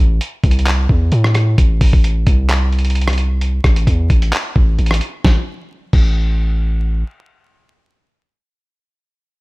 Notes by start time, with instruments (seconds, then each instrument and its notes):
Already playing: 808-style bass A1
0.21 closed hi-hat
0.44 808-style bass C2, kick, closed hi-hat
0.51 closed hi-hat
0.59 closed hi-hat
0.66 clap, closed hi-hat
0.89 808-style bass E2, kick
1.12 808-style bass A2, closed hi-hat
1.24 cross-stick
1.35 cross-stick, closed hi-hat
1.58 808-style bass A1, kick, closed hi-hat
1.81 808-style bass A1, kick, open hi-hat
1.93 808-style bass A1, kick
2.04 closed hi-hat
2.27 808-style bass C2, kick, closed hi-hat
2.49 clap, closed hi-hat
2.73 closed hi-hat
2.79 closed hi-hat
2.85 closed hi-hat
2.90 closed hi-hat
2.95 closed hi-hat
3.02 closed hi-hat
3.08 cross-stick, closed hi-hat
3.13 closed hi-hat
3.18 closed hi-hat
3.41 closed hi-hat
3.64 808-style bass A1, kick, cross-stick, closed hi-hat, open hi-hat
3.76 closed hi-hat
3.87 808-style bass E2, kick, closed hi-hat
4.10 808-style bass A1, kick, closed hi-hat
4.22 closed hi-hat
4.33 clap, closed hi-hat
4.56 808-style bass A1, kick
4.79 808-style bass A1, closed hi-hat
4.86 closed hi-hat
4.91 cross-stick, closed hi-hat
5.01 closed hi-hat
5.24 808-style bass A1, kick, snare
5.93 808-style bass A1, kick, crash